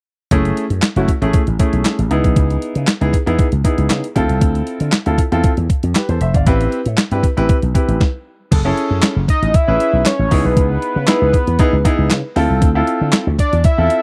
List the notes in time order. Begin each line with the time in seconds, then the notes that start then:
0.31 F#1 A3 C#4 E4 G#4, kick, closed hi-hat
0.45 closed hi-hat
0.57 closed hi-hat
0.70 F#2, closed hi-hat
0.82 snare, clap, closed hi-hat
0.96 F#1 A3 C#4 E4 F#4, closed hi-hat
1.08 kick, closed hi-hat
1.22 A1 A3 C#4 E4 G#4, closed hi-hat
1.33 kick, closed hi-hat
1.47 A1, closed hi-hat
1.59 A3 C#4 E4 G#4, kick, closed hi-hat
1.73 B1, closed hi-hat
1.85 snare, clap, closed hi-hat
1.99 A1, closed hi-hat
2.11 C#2 B3 D#4 E4 G#4, closed hi-hat
2.24 B1, kick, closed hi-hat
2.36 C#2, kick, closed hi-hat
2.50 closed hi-hat
2.62 closed hi-hat
2.75 C#3, closed hi-hat
2.87 snare, clap, closed hi-hat
3.01 C#2 B3 D#4 E4 G#4, closed hi-hat
3.13 kick, closed hi-hat
3.26 E2 B3 D#4 E4 G#4, closed hi-hat
3.39 kick, closed hi-hat
3.52 C#2, closed hi-hat
3.64 B3 D#4 E4 G#4, kick, closed hi-hat
3.78 C#2, closed hi-hat
3.90 C#3, snare, clap, closed hi-hat
4.04 closed hi-hat
4.16 D2 C4 E4 F4 A4, kick, closed hi-hat
4.29 C2, closed hi-hat
4.41 D2, kick, closed hi-hat
4.55 closed hi-hat
4.67 closed hi-hat
4.80 D3, closed hi-hat
4.92 snare, clap, closed hi-hat
5.06 D2 C4 E4 F4 A4, closed hi-hat
5.18 kick, closed hi-hat
5.32 E2 C4 E4 F4 A4, closed hi-hat
5.44 kick, closed hi-hat
5.57 E2, closed hi-hat
5.70 kick, closed hi-hat
5.83 F2, closed hi-hat
5.95 G4 B4, snare, clap, closed hi-hat
6.09 E2 A4 C5, closed hi-hat
6.21 F1 C5 E5, closed hi-hat
6.34 G1 D5 F5, kick, closed hi-hat
6.46 A1 C4 E4 G4 B4, kick, closed hi-hat
6.61 closed hi-hat
6.72 closed hi-hat
6.86 A2, closed hi-hat
6.97 snare, clap, closed hi-hat
7.11 G2 C4 E4 G4 B4, closed hi-hat
7.23 kick, closed hi-hat
7.37 A1 C4 E4 G4 B4, closed hi-hat
7.49 kick, closed hi-hat
7.62 B1, closed hi-hat
7.74 C4 E4 G4 B4, kick, closed hi-hat
7.88 A1, closed hi-hat
8.01 kick, snare
8.51 F#1 G#4 A4, kick, closed hi-hat, crash
8.65 C#4 E4 G#4 A4
8.77 closed hi-hat
8.91 F#2
9.02 snare, clap, closed hi-hat
9.16 F#1
9.28 D#5, kick, closed hi-hat
9.42 A1, closed hi-hat
9.54 E5, kick, closed hi-hat
9.68 A1 C#4 E4 G#4 B4
9.80 closed hi-hat
9.93 B1
10.05 C#5, snare, clap, closed hi-hat
10.19 A1
10.31 C#2 B3 D#4 E4 G#4, kick, open hi-hat
10.45 B1 B4
10.57 C#2, kick, closed hi-hat
10.82 closed hi-hat
10.96 C#3
11.07 B3 D#4 E4 G#4, snare, clap, closed hi-hat
11.22 C#2
11.33 kick, closed hi-hat
11.47 E2, closed hi-hat
11.59 B3 D#4 E4 G#4, kick, closed hi-hat
11.73 C#2
11.85 B3 D#4 E4 G#4, kick, closed hi-hat
11.99 C#2
12.10 C#3, snare, clap, closed hi-hat
12.36 D2 C4 E4 F4 A4, open hi-hat
12.50 C2
12.62 D2, kick, closed hi-hat
12.75 C4 E4 F4 A4
12.87 closed hi-hat
13.01 D3
13.12 snare, clap, closed hi-hat
13.27 D2
13.39 D5, kick, closed hi-hat
13.53 E2, closed hi-hat
13.64 E5, kick, closed hi-hat
13.78 E2 C4 E4 F4 A4
13.90 closed hi-hat